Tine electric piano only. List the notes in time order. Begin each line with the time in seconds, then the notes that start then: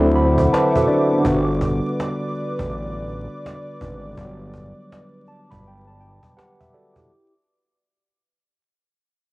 Already playing: D3 F#3 C4 E4 A4 C5
0.15 B5
0.53 B4 A5
0.76 F#4 A4 F#5
0.88 D4 F#4 D5
1.12 B3 D4
1.20 D3 G3
1.28 B3
1.32 F#4
4.12 D3
4.16 G3
4.21 F#3 B3
5.28 A5
5.51 B5
5.68 G5
5.87 A5
6.00 G5
6.37 G4 B4 F#5
6.60 E5
6.74 F#4 A4 D5
6.98 E4 G4